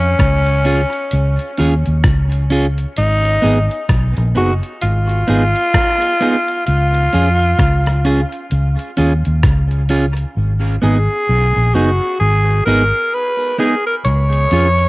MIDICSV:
0, 0, Header, 1, 5, 480
1, 0, Start_track
1, 0, Tempo, 924499
1, 1538, Time_signature, 4, 2, 24, 8
1, 7729, End_track
2, 0, Start_track
2, 0, Title_t, "Tenor saxophone"
2, 0, Program_c, 0, 66
2, 0, Note_on_c, 0, 61, 96
2, 1065, Note_off_c, 0, 61, 0
2, 1547, Note_on_c, 0, 63, 115
2, 2002, Note_off_c, 0, 63, 0
2, 2270, Note_on_c, 0, 66, 113
2, 2353, Note_off_c, 0, 66, 0
2, 2503, Note_on_c, 0, 65, 127
2, 3439, Note_off_c, 0, 65, 0
2, 3458, Note_on_c, 0, 65, 104
2, 4396, Note_off_c, 0, 65, 0
2, 5623, Note_on_c, 0, 68, 97
2, 6096, Note_on_c, 0, 66, 94
2, 6104, Note_off_c, 0, 68, 0
2, 6328, Note_off_c, 0, 66, 0
2, 6331, Note_on_c, 0, 68, 103
2, 6556, Note_off_c, 0, 68, 0
2, 6569, Note_on_c, 0, 70, 109
2, 6822, Note_on_c, 0, 71, 101
2, 6830, Note_off_c, 0, 70, 0
2, 7056, Note_off_c, 0, 71, 0
2, 7059, Note_on_c, 0, 68, 96
2, 7191, Note_off_c, 0, 68, 0
2, 7199, Note_on_c, 0, 70, 84
2, 7242, Note_off_c, 0, 70, 0
2, 7294, Note_on_c, 0, 73, 124
2, 7729, Note_off_c, 0, 73, 0
2, 7729, End_track
3, 0, Start_track
3, 0, Title_t, "Clean electric guitar"
3, 0, Program_c, 1, 27
3, 337, Note_on_c, 1, 61, 73
3, 341, Note_on_c, 1, 65, 87
3, 344, Note_on_c, 1, 68, 82
3, 415, Note_off_c, 1, 61, 0
3, 417, Note_off_c, 1, 65, 0
3, 419, Note_off_c, 1, 68, 0
3, 820, Note_on_c, 1, 61, 83
3, 824, Note_on_c, 1, 65, 89
3, 827, Note_on_c, 1, 68, 90
3, 897, Note_off_c, 1, 61, 0
3, 898, Note_off_c, 1, 65, 0
3, 900, Note_off_c, 1, 68, 0
3, 1299, Note_on_c, 1, 61, 87
3, 1305, Note_on_c, 1, 65, 89
3, 1308, Note_on_c, 1, 68, 92
3, 1376, Note_off_c, 1, 61, 0
3, 1379, Note_off_c, 1, 65, 0
3, 1381, Note_off_c, 1, 68, 0
3, 1776, Note_on_c, 1, 59, 80
3, 1780, Note_on_c, 1, 63, 82
3, 1785, Note_on_c, 1, 68, 94
3, 1854, Note_off_c, 1, 59, 0
3, 1857, Note_off_c, 1, 63, 0
3, 1859, Note_off_c, 1, 68, 0
3, 2259, Note_on_c, 1, 59, 74
3, 2265, Note_on_c, 1, 63, 73
3, 2268, Note_on_c, 1, 68, 91
3, 2336, Note_off_c, 1, 59, 0
3, 2339, Note_off_c, 1, 63, 0
3, 2341, Note_off_c, 1, 68, 0
3, 2739, Note_on_c, 1, 59, 86
3, 2744, Note_on_c, 1, 63, 84
3, 2751, Note_on_c, 1, 68, 104
3, 2816, Note_off_c, 1, 59, 0
3, 2818, Note_off_c, 1, 63, 0
3, 2822, Note_off_c, 1, 68, 0
3, 3221, Note_on_c, 1, 59, 83
3, 3227, Note_on_c, 1, 63, 86
3, 3231, Note_on_c, 1, 68, 85
3, 3297, Note_off_c, 1, 59, 0
3, 3300, Note_off_c, 1, 63, 0
3, 3302, Note_off_c, 1, 68, 0
3, 3702, Note_on_c, 1, 61, 65
3, 3707, Note_on_c, 1, 65, 83
3, 3708, Note_on_c, 1, 68, 79
3, 3777, Note_off_c, 1, 61, 0
3, 3780, Note_off_c, 1, 65, 0
3, 3781, Note_off_c, 1, 68, 0
3, 4179, Note_on_c, 1, 61, 87
3, 4184, Note_on_c, 1, 65, 81
3, 4188, Note_on_c, 1, 68, 89
3, 4256, Note_off_c, 1, 61, 0
3, 4258, Note_off_c, 1, 65, 0
3, 4260, Note_off_c, 1, 68, 0
3, 4659, Note_on_c, 1, 61, 86
3, 4662, Note_on_c, 1, 65, 96
3, 4665, Note_on_c, 1, 68, 87
3, 4735, Note_off_c, 1, 61, 0
3, 4737, Note_off_c, 1, 65, 0
3, 4738, Note_off_c, 1, 68, 0
3, 5139, Note_on_c, 1, 61, 79
3, 5143, Note_on_c, 1, 65, 88
3, 5144, Note_on_c, 1, 68, 88
3, 5215, Note_off_c, 1, 61, 0
3, 5217, Note_off_c, 1, 65, 0
3, 5218, Note_off_c, 1, 68, 0
3, 5615, Note_on_c, 1, 59, 76
3, 5620, Note_on_c, 1, 63, 77
3, 5625, Note_on_c, 1, 68, 92
3, 5693, Note_off_c, 1, 59, 0
3, 5696, Note_off_c, 1, 63, 0
3, 5698, Note_off_c, 1, 68, 0
3, 6099, Note_on_c, 1, 59, 84
3, 6102, Note_on_c, 1, 63, 96
3, 6107, Note_on_c, 1, 68, 89
3, 6175, Note_off_c, 1, 59, 0
3, 6177, Note_off_c, 1, 63, 0
3, 6179, Note_off_c, 1, 68, 0
3, 6577, Note_on_c, 1, 59, 86
3, 6581, Note_on_c, 1, 63, 91
3, 6588, Note_on_c, 1, 68, 105
3, 6654, Note_off_c, 1, 59, 0
3, 6656, Note_off_c, 1, 63, 0
3, 6659, Note_off_c, 1, 68, 0
3, 7053, Note_on_c, 1, 59, 76
3, 7057, Note_on_c, 1, 63, 94
3, 7061, Note_on_c, 1, 68, 92
3, 7132, Note_off_c, 1, 59, 0
3, 7133, Note_off_c, 1, 63, 0
3, 7135, Note_off_c, 1, 68, 0
3, 7538, Note_on_c, 1, 61, 68
3, 7542, Note_on_c, 1, 65, 84
3, 7547, Note_on_c, 1, 68, 79
3, 7614, Note_off_c, 1, 61, 0
3, 7616, Note_off_c, 1, 65, 0
3, 7618, Note_off_c, 1, 68, 0
3, 7729, End_track
4, 0, Start_track
4, 0, Title_t, "Fingered electric bass"
4, 0, Program_c, 2, 33
4, 0, Note_on_c, 2, 41, 93
4, 69, Note_off_c, 2, 41, 0
4, 102, Note_on_c, 2, 37, 94
4, 434, Note_off_c, 2, 37, 0
4, 587, Note_on_c, 2, 37, 97
4, 708, Note_off_c, 2, 37, 0
4, 827, Note_on_c, 2, 39, 86
4, 949, Note_off_c, 2, 39, 0
4, 972, Note_on_c, 2, 39, 85
4, 1051, Note_off_c, 2, 39, 0
4, 1063, Note_on_c, 2, 37, 91
4, 1477, Note_off_c, 2, 37, 0
4, 1547, Note_on_c, 2, 32, 99
4, 1751, Note_off_c, 2, 32, 0
4, 1787, Note_on_c, 2, 32, 100
4, 1908, Note_off_c, 2, 32, 0
4, 2025, Note_on_c, 2, 35, 94
4, 2147, Note_off_c, 2, 35, 0
4, 2169, Note_on_c, 2, 34, 96
4, 2249, Note_off_c, 2, 34, 0
4, 2509, Note_on_c, 2, 32, 91
4, 2712, Note_off_c, 2, 32, 0
4, 2749, Note_on_c, 2, 32, 87
4, 2869, Note_off_c, 2, 32, 0
4, 3467, Note_on_c, 2, 37, 86
4, 3671, Note_off_c, 2, 37, 0
4, 3708, Note_on_c, 2, 41, 103
4, 3911, Note_off_c, 2, 41, 0
4, 3944, Note_on_c, 2, 37, 95
4, 4274, Note_off_c, 2, 37, 0
4, 4423, Note_on_c, 2, 37, 88
4, 4545, Note_off_c, 2, 37, 0
4, 4665, Note_on_c, 2, 39, 80
4, 4787, Note_off_c, 2, 39, 0
4, 4812, Note_on_c, 2, 39, 81
4, 4890, Note_off_c, 2, 39, 0
4, 4903, Note_on_c, 2, 37, 87
4, 5317, Note_off_c, 2, 37, 0
4, 5382, Note_on_c, 2, 32, 87
4, 5588, Note_off_c, 2, 32, 0
4, 5624, Note_on_c, 2, 32, 102
4, 5745, Note_off_c, 2, 32, 0
4, 5862, Note_on_c, 2, 35, 91
4, 5984, Note_off_c, 2, 35, 0
4, 6003, Note_on_c, 2, 34, 97
4, 6085, Note_off_c, 2, 34, 0
4, 6338, Note_on_c, 2, 32, 98
4, 6545, Note_off_c, 2, 32, 0
4, 6575, Note_on_c, 2, 32, 90
4, 6700, Note_off_c, 2, 32, 0
4, 7297, Note_on_c, 2, 37, 102
4, 7504, Note_off_c, 2, 37, 0
4, 7537, Note_on_c, 2, 41, 89
4, 7729, Note_off_c, 2, 41, 0
4, 7729, End_track
5, 0, Start_track
5, 0, Title_t, "Drums"
5, 0, Note_on_c, 9, 42, 45
5, 52, Note_off_c, 9, 42, 0
5, 99, Note_on_c, 9, 36, 111
5, 100, Note_on_c, 9, 42, 75
5, 102, Note_on_c, 9, 37, 108
5, 151, Note_off_c, 9, 36, 0
5, 152, Note_off_c, 9, 42, 0
5, 154, Note_off_c, 9, 37, 0
5, 241, Note_on_c, 9, 42, 49
5, 293, Note_off_c, 9, 42, 0
5, 337, Note_on_c, 9, 42, 69
5, 389, Note_off_c, 9, 42, 0
5, 482, Note_on_c, 9, 42, 52
5, 534, Note_off_c, 9, 42, 0
5, 577, Note_on_c, 9, 42, 95
5, 629, Note_off_c, 9, 42, 0
5, 722, Note_on_c, 9, 42, 50
5, 774, Note_off_c, 9, 42, 0
5, 817, Note_on_c, 9, 42, 71
5, 869, Note_off_c, 9, 42, 0
5, 964, Note_on_c, 9, 42, 52
5, 1016, Note_off_c, 9, 42, 0
5, 1058, Note_on_c, 9, 37, 115
5, 1059, Note_on_c, 9, 36, 113
5, 1059, Note_on_c, 9, 42, 94
5, 1110, Note_off_c, 9, 37, 0
5, 1111, Note_off_c, 9, 36, 0
5, 1111, Note_off_c, 9, 42, 0
5, 1204, Note_on_c, 9, 42, 64
5, 1256, Note_off_c, 9, 42, 0
5, 1299, Note_on_c, 9, 42, 76
5, 1351, Note_off_c, 9, 42, 0
5, 1443, Note_on_c, 9, 42, 63
5, 1495, Note_off_c, 9, 42, 0
5, 1539, Note_on_c, 9, 42, 92
5, 1591, Note_off_c, 9, 42, 0
5, 1687, Note_on_c, 9, 42, 54
5, 1739, Note_off_c, 9, 42, 0
5, 1780, Note_on_c, 9, 42, 64
5, 1832, Note_off_c, 9, 42, 0
5, 1927, Note_on_c, 9, 42, 42
5, 1979, Note_off_c, 9, 42, 0
5, 2020, Note_on_c, 9, 42, 69
5, 2021, Note_on_c, 9, 36, 107
5, 2022, Note_on_c, 9, 37, 110
5, 2072, Note_off_c, 9, 36, 0
5, 2072, Note_off_c, 9, 42, 0
5, 2074, Note_off_c, 9, 37, 0
5, 2164, Note_on_c, 9, 42, 48
5, 2216, Note_off_c, 9, 42, 0
5, 2262, Note_on_c, 9, 42, 68
5, 2314, Note_off_c, 9, 42, 0
5, 2405, Note_on_c, 9, 42, 53
5, 2457, Note_off_c, 9, 42, 0
5, 2500, Note_on_c, 9, 42, 93
5, 2552, Note_off_c, 9, 42, 0
5, 2645, Note_on_c, 9, 42, 47
5, 2697, Note_off_c, 9, 42, 0
5, 2741, Note_on_c, 9, 42, 77
5, 2793, Note_off_c, 9, 42, 0
5, 2886, Note_on_c, 9, 42, 56
5, 2937, Note_off_c, 9, 42, 0
5, 2981, Note_on_c, 9, 36, 107
5, 2982, Note_on_c, 9, 37, 112
5, 2984, Note_on_c, 9, 42, 90
5, 3033, Note_off_c, 9, 36, 0
5, 3034, Note_off_c, 9, 37, 0
5, 3036, Note_off_c, 9, 42, 0
5, 3125, Note_on_c, 9, 42, 71
5, 3177, Note_off_c, 9, 42, 0
5, 3222, Note_on_c, 9, 42, 76
5, 3274, Note_off_c, 9, 42, 0
5, 3365, Note_on_c, 9, 42, 56
5, 3417, Note_off_c, 9, 42, 0
5, 3460, Note_on_c, 9, 42, 86
5, 3512, Note_off_c, 9, 42, 0
5, 3605, Note_on_c, 9, 42, 53
5, 3657, Note_off_c, 9, 42, 0
5, 3701, Note_on_c, 9, 42, 70
5, 3753, Note_off_c, 9, 42, 0
5, 3843, Note_on_c, 9, 42, 37
5, 3895, Note_off_c, 9, 42, 0
5, 3940, Note_on_c, 9, 36, 112
5, 3941, Note_on_c, 9, 42, 71
5, 3943, Note_on_c, 9, 37, 118
5, 3992, Note_off_c, 9, 36, 0
5, 3993, Note_off_c, 9, 42, 0
5, 3995, Note_off_c, 9, 37, 0
5, 4083, Note_on_c, 9, 42, 46
5, 4088, Note_on_c, 9, 37, 69
5, 4135, Note_off_c, 9, 42, 0
5, 4140, Note_off_c, 9, 37, 0
5, 4180, Note_on_c, 9, 42, 66
5, 4232, Note_off_c, 9, 42, 0
5, 4323, Note_on_c, 9, 42, 53
5, 4375, Note_off_c, 9, 42, 0
5, 4419, Note_on_c, 9, 42, 92
5, 4471, Note_off_c, 9, 42, 0
5, 4564, Note_on_c, 9, 42, 53
5, 4616, Note_off_c, 9, 42, 0
5, 4658, Note_on_c, 9, 42, 81
5, 4710, Note_off_c, 9, 42, 0
5, 4804, Note_on_c, 9, 42, 54
5, 4856, Note_off_c, 9, 42, 0
5, 4898, Note_on_c, 9, 37, 107
5, 4899, Note_on_c, 9, 36, 117
5, 4900, Note_on_c, 9, 42, 86
5, 4950, Note_off_c, 9, 37, 0
5, 4951, Note_off_c, 9, 36, 0
5, 4952, Note_off_c, 9, 42, 0
5, 5042, Note_on_c, 9, 42, 67
5, 5094, Note_off_c, 9, 42, 0
5, 5135, Note_on_c, 9, 42, 76
5, 5187, Note_off_c, 9, 42, 0
5, 5279, Note_on_c, 9, 42, 61
5, 5331, Note_off_c, 9, 42, 0
5, 7294, Note_on_c, 9, 42, 84
5, 7345, Note_off_c, 9, 42, 0
5, 7438, Note_on_c, 9, 42, 53
5, 7490, Note_off_c, 9, 42, 0
5, 7533, Note_on_c, 9, 42, 73
5, 7585, Note_off_c, 9, 42, 0
5, 7677, Note_on_c, 9, 42, 36
5, 7729, Note_off_c, 9, 42, 0
5, 7729, End_track
0, 0, End_of_file